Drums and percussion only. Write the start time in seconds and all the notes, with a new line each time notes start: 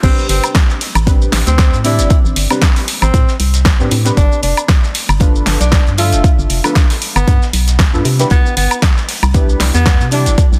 0.03 kick, closed hi-hat, crash, shaker
0.18 shaker
0.29 closed hi-hat, open hi-hat
0.44 closed hi-hat, high woodblock, shaker
0.55 kick, snare, closed hi-hat, shaker
0.69 snare, shaker
0.81 snare, open hi-hat
0.95 closed hi-hat, high woodblock, shaker
1.07 kick, closed hi-hat, shaker
1.22 shaker
1.32 snare, closed hi-hat, open hi-hat
1.46 snare, closed hi-hat, shaker
1.58 kick, snare, closed hi-hat, shaker
1.73 closed hi-hat, shaker
1.84 snare, closed hi-hat, open hi-hat
1.98 snare, closed hi-hat, shaker
2.10 kick, closed hi-hat, shaker
2.25 shaker
2.36 closed hi-hat, open hi-hat
2.50 snare, closed hi-hat, high woodblock, shaker
2.62 kick, snare, closed hi-hat, shaker
2.76 snare, open hi-hat, shaker
2.88 closed hi-hat, open hi-hat
3.02 high woodblock, shaker
3.14 kick, closed hi-hat, shaker
3.28 snare, shaker
3.40 closed hi-hat, open hi-hat
3.54 snare, closed hi-hat, shaker
3.65 kick, snare, closed hi-hat, shaker
3.80 shaker
3.91 closed hi-hat, open hi-hat
4.05 snare, closed hi-hat, shaker
4.17 kick, closed hi-hat, shaker
4.32 shaker
4.43 closed hi-hat, open hi-hat
4.57 closed hi-hat, high woodblock, shaker
4.68 kick, snare, closed hi-hat, shaker
4.83 snare, shaker
4.94 snare, open hi-hat
5.09 closed hi-hat, high woodblock, shaker
5.20 kick, closed hi-hat, shaker
5.36 shaker
5.46 snare, closed hi-hat, open hi-hat
5.60 snare, closed hi-hat, shaker
5.71 kick, snare, closed hi-hat, shaker
5.87 closed hi-hat, shaker
5.98 snare, closed hi-hat, open hi-hat
6.12 snare, closed hi-hat, shaker
6.24 kick, closed hi-hat, shaker
6.39 shaker
6.50 closed hi-hat, open hi-hat
6.64 snare, closed hi-hat, high woodblock, shaker
6.75 kick, snare, closed hi-hat, shaker
6.90 snare, open hi-hat, shaker
7.02 closed hi-hat, open hi-hat
7.16 closed hi-hat, high woodblock, shaker
7.28 kick, closed hi-hat, shaker
7.42 snare, shaker
7.53 closed hi-hat, open hi-hat
7.67 snare, closed hi-hat, shaker
7.79 kick, snare, closed hi-hat, shaker
7.94 shaker
8.05 closed hi-hat, open hi-hat
8.19 snare, closed hi-hat, shaker
8.30 kick, closed hi-hat, shaker
8.46 shaker
8.57 closed hi-hat, open hi-hat
8.71 closed hi-hat, high woodblock, shaker
8.82 kick, snare, closed hi-hat, shaker
8.97 snare, shaker
9.08 snare, open hi-hat
9.23 closed hi-hat, high woodblock, shaker
9.34 kick, closed hi-hat, shaker
9.49 shaker
9.60 snare, closed hi-hat, open hi-hat
9.74 snare, closed hi-hat, shaker
9.86 kick, snare, closed hi-hat, shaker
10.00 closed hi-hat, shaker
10.11 snare, closed hi-hat, open hi-hat
10.26 snare, closed hi-hat, shaker
10.38 kick, closed hi-hat, shaker
10.53 shaker